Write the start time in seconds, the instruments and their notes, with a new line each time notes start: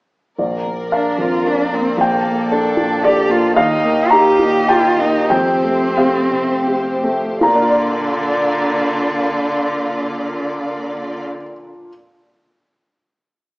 0.38 upright piano A#1 D5, string section A#3 A#4 D5
0.65 upright piano A#3
0.92 upright piano D4 A#4 F5, cello D4
1.18 upright piano F2, cello F4
1.46 upright piano D4 A#4, cello D4
1.73 upright piano A#3, cello C4
1.97 upright piano A#1 G5, cello A#3, string section A4
2.25 upright piano A#3
2.52 upright piano D4 A4, cello D4
2.77 upright piano A#2
3.04 upright piano D4 A4 D5, cello G4
3.29 upright piano A#3, cello F4
3.56 upright piano D#2 F5, cello D#4, string section G4 D#5
3.84 upright piano A#3
4.11 upright piano D#4 G4 A#5, cello G4
4.39 upright piano A#2
4.68 upright piano D#4 G4 G5, cello F4
4.99 upright piano A#3, cello D#4
5.30 upright piano F2 G5, string section A3 C5, cello C4
5.64 upright piano A3
5.97 upright piano C4 G4 F5
6.31 upright piano C3
6.67 upright piano C4 G4
7.04 upright piano A3
7.41 upright piano A#2 A#5, cello D3, string section A#3 F4 D5
7.48 upright piano A#3
7.55 upright piano D4
7.62 upright piano F4
7.69 upright piano D5